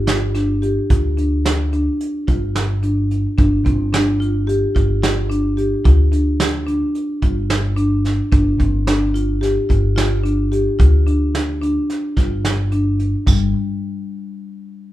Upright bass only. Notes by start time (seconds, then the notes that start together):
Already playing: G1
0.90 D2
2.28 G1
3.38 G1
3.66 G1
4.76 G1
5.86 D2
7.23 G1
8.32 G1
8.60 G1
9.70 G1
10.80 D2
12.17 G1
13.27 G1